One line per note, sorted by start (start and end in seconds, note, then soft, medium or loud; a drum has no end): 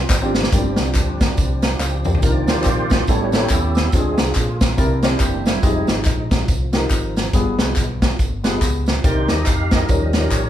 0.00 0.49 F3 medium
0.00 0.52 C4 medium
0.00 0.49 D4 medium
0.00 0.50 G4 medium
0.09 0.46 G#1 loud
0.09 kick medium
0.09 snare medium
0.09 clap medium
0.09 tambourine medium
0.22 0.42 C4 medium
0.22 0.42 D4 medium
0.22 0.43 F4 medium
0.22 0.43 G4 medium
0.34 snare medium
0.34 tambourine medium
0.43 snare medium
0.52 0.74 G1 loud
0.52 1.16 G2 medium
0.52 2.19 F3 medium
0.52 2.21 F3 medium
0.52 2.21 G3 medium
0.52 0.58 A#3 medium
0.52 0.59 A#3 medium
0.52 2.22 C4 medium
0.52 2.19 D4 medium
0.52 1.07 D4 medium
0.52 2.21 D4 medium
0.52 1.07 F4 medium
0.52 2.19 G4 medium
0.52 1.07 G4 medium
0.52 kick loud
0.52 closed hi-hat loud
0.52 tambourine medium
0.58 1.09 C4 medium
0.58 2.22 C4 medium
0.76 0.92 C2 medium
0.76 snare medium
0.76 closed hi-hat medium
0.76 tambourine medium
0.95 1.31 D2 medium
0.95 kick medium
0.95 clap medium
0.95 closed hi-hat loud
0.95 tambourine medium
1.20 kick medium
1.20 snare loud
1.20 closed hi-hat medium
1.20 tambourine medium
1.37 1.74 C2 medium
1.37 kick medium
1.37 closed hi-hat medium
1.37 tambourine medium
1.62 snare loud
1.62 closed hi-hat medium
1.62 tambourine medium
1.79 2.15 C#2 medium
1.79 2.04 C5 soft
1.79 2.04 F5 medium
1.79 snare medium
1.79 clap medium
1.79 tambourine medium
2.04 2.47 G4 soft
2.04 2.46 C5 medium
2.04 mid tom medium
2.04 tambourine soft
2.15 floor tom medium
2.22 2.44 C2 medium
2.22 2.87 C3 medium
2.22 3.03 D#3 medium
2.22 3.03 F3 soft
2.22 3.04 A#3 soft
2.22 3.04 C4 medium
2.22 2.77 D4 medium
2.22 2.77 D#4 medium
2.22 2.78 F4 medium
2.22 2.34 A#4 medium
2.22 2.77 A#4 medium
2.22 3.04 D5 medium
2.22 kick loud
2.22 closed hi-hat medium
2.22 tambourine medium
2.47 2.63 D2 medium
2.47 3.04 F4 medium
2.47 3.04 G4 medium
2.47 3.10 C5 loud
2.47 snare loud
2.47 closed hi-hat medium
2.47 tambourine soft
2.64 3.02 A#1 medium
2.64 kick medium
2.64 clap medium
2.64 closed hi-hat loud
2.64 tambourine medium
2.90 3.07 F4 medium
2.90 kick medium
2.90 snare loud
2.90 closed hi-hat medium
2.90 tambourine medium
3.07 3.44 A1 medium
3.07 3.72 A2 medium
3.07 3.39 G3 medium
3.07 3.39 B3 soft
3.07 3.28 C#4 medium
3.07 3.39 C#4 medium
3.07 3.33 C#4 medium
3.07 3.28 E4 medium
3.07 3.49 E4 medium
3.07 3.28 G4 medium
3.07 3.90 G4 medium
3.07 3.32 A4 medium
3.07 3.29 A4 medium
3.07 3.53 C#5 loud
3.07 kick medium
3.07 closed hi-hat medium
3.07 tambourine medium
3.32 3.91 B3 medium
3.32 3.72 C#4 medium
3.32 3.72 E4 medium
3.32 3.91 G4 medium
3.32 3.73 G4 medium
3.32 3.73 A4 medium
3.32 snare loud
3.32 closed hi-hat medium
3.32 tambourine medium
3.50 3.86 D#2 medium
3.50 3.90 C#4 medium
3.50 3.90 E4 medium
3.50 3.94 A4 medium
3.50 kick medium
3.50 clap medium
3.50 closed hi-hat medium
3.50 tambourine medium
3.75 snare loud
3.75 closed hi-hat medium
3.75 tambourine soft
3.92 4.15 D2 medium
3.92 4.57 D3 medium
3.92 4.23 F3 medium
3.92 4.24 G#3 soft
3.92 4.24 C4 medium
3.92 4.48 C4 medium
3.92 4.48 D4 medium
3.92 4.74 F4 medium
3.92 4.48 F4 medium
3.92 4.00 G4 medium
3.92 4.57 G#4 medium
3.92 kick loud
3.92 closed hi-hat medium
3.92 tambourine medium
4.00 4.51 G#4 medium
4.18 4.33 C2 medium
4.18 snare loud
4.18 closed hi-hat medium
4.18 tambourine medium
4.35 4.78 A#1 medium
4.35 kick medium
4.35 clap medium
4.35 closed hi-hat medium
4.35 tambourine medium
4.61 kick medium
4.61 snare loud
4.61 closed hi-hat medium
4.61 tambourine medium
4.77 5.14 C2 medium
4.77 5.42 C3 medium
4.77 5.59 E3 medium
4.77 5.59 A#3 medium
4.77 4.98 C4 medium
4.77 5.60 D4 medium
4.77 4.98 E4 medium
4.77 4.98 G4 medium
4.77 4.99 A#4 medium
4.77 kick loud
4.77 closed hi-hat medium
4.77 tambourine medium
5.02 5.42 C4 medium
5.02 5.20 D4 medium
5.02 5.43 E4 medium
5.02 5.43 G4 medium
5.02 5.20 A#4 medium
5.02 5.43 C5 medium
5.02 snare loud
5.02 closed hi-hat medium
5.02 tambourine soft
5.19 5.57 F#1 medium
5.19 5.45 A#3 medium
5.19 5.45 G4 medium
5.19 kick medium
5.19 clap medium
5.19 closed hi-hat medium
5.19 tambourine medium
5.46 5.87 G3 medium
5.46 5.87 E4 medium
5.46 snare loud
5.46 closed hi-hat medium
5.46 tambourine medium
5.62 5.85 F1 medium
5.62 7.29 F3 medium
5.62 6.31 G#3 soft
5.62 6.32 D#4 medium
5.62 6.18 D#4 medium
5.62 6.18 F4 medium
5.62 6.18 G4 medium
5.62 6.18 G#4 medium
5.62 kick loud
5.62 closed hi-hat medium
5.62 tambourine medium
5.87 6.03 G#1 medium
5.87 snare loud
5.87 closed hi-hat medium
5.87 tambourine soft
6.05 6.48 A#1 medium
6.05 kick medium
6.05 clap medium
6.05 closed hi-hat medium
6.05 tambourine medium
6.31 6.47 G3 soft
6.31 6.47 G#3 soft
6.31 6.48 D#4 medium
6.31 kick medium
6.31 snare loud
6.31 closed hi-hat medium
6.31 tambourine medium
6.48 6.85 C2 medium
6.48 kick loud
6.48 closed hi-hat medium
6.48 tambourine medium
6.72 7.12 D#4 medium
6.72 7.12 F4 medium
6.72 7.12 G4 medium
6.72 7.13 A#4 medium
6.72 snare loud
6.72 closed hi-hat medium
6.72 tambourine soft
6.90 7.27 G#1 medium
6.90 kick medium
6.90 clap medium
6.90 closed hi-hat medium
6.90 tambourine medium
7.16 snare medium
7.16 closed hi-hat medium
7.16 tambourine soft
7.33 7.55 G1 medium
7.33 7.98 G2 medium
7.33 7.88 B3 medium
7.33 7.88 F4 medium
7.33 7.88 G4 medium
7.33 7.89 G#4 medium
7.33 kick loud
7.33 closed hi-hat loud
7.33 tambourine medium
7.58 7.73 C2 medium
7.58 7.85 F3 medium
7.58 7.86 G#3 soft
7.58 7.86 B3 medium
7.58 snare loud
7.58 closed hi-hat medium
7.58 tambourine soft
7.76 8.13 B1 medium
7.76 kick medium
7.76 clap medium
7.76 closed hi-hat loud
7.76 tambourine medium
8.02 kick medium
8.02 snare loud
8.02 closed hi-hat medium
8.02 tambourine medium
8.19 8.56 G1 medium
8.19 kick medium
8.19 closed hi-hat medium
8.19 tambourine medium
8.44 8.60 F3 soft
8.44 8.60 G#3 soft
8.44 8.83 B3 medium
8.44 8.60 B3 soft
8.44 8.83 F4 medium
8.44 8.83 G4 medium
8.44 8.83 G#4 medium
8.44 snare medium
8.44 closed hi-hat medium
8.44 tambourine soft
8.61 8.98 C#2 medium
8.61 kick medium
8.61 clap medium
8.61 closed hi-hat medium
8.61 tambourine medium
8.86 snare loud
8.86 closed hi-hat medium
8.86 tambourine soft
9.04 9.26 C2 medium
9.04 9.68 C3 medium
9.04 9.35 D#3 medium
9.04 9.35 A#3 medium
9.04 9.59 C4 medium
9.04 9.35 D4 medium
9.04 9.59 D#4 medium
9.04 9.86 D#4 medium
9.04 9.71 G4 medium
9.04 9.59 G4 medium
9.04 9.59 A#4 medium
9.04 9.28 C5 medium
9.04 kick loud
9.04 closed hi-hat medium
9.04 tambourine medium
9.28 9.44 D#2 medium
9.28 9.47 D#5 medium
9.28 snare medium
9.28 closed hi-hat medium
9.28 tambourine soft
9.46 9.83 F2 medium
9.46 9.73 F5 medium
9.46 kick medium
9.46 clap medium
9.46 closed hi-hat loud
9.46 tambourine medium
9.71 10.49 G4 medium
9.71 10.49 A#4 medium
9.71 10.34 D#5 loud
9.71 kick medium
9.71 snare loud
9.71 closed hi-hat medium
9.71 tambourine medium
9.88 10.26 D#2 medium
9.88 10.49 D#3 medium
9.88 10.49 F3 soft
9.88 10.49 G3 soft
9.88 10.09 C#4 medium
9.88 10.49 C#4 medium
9.88 10.09 D#4 medium
9.88 10.10 G4 medium
9.88 10.10 A#4 medium
9.88 kick loud
9.88 closed hi-hat medium
9.88 tambourine medium
10.13 10.49 C#4 medium
10.13 10.49 D#4 medium
10.13 10.19 F4 medium
10.13 10.49 A#4 medium
10.13 snare loud
10.13 closed hi-hat medium
10.13 tambourine medium
10.20 10.49 G4 medium
10.31 10.49 A1 medium
10.31 10.49 C#5 medium
10.31 kick medium
10.31 clap medium
10.31 closed hi-hat medium
10.31 tambourine medium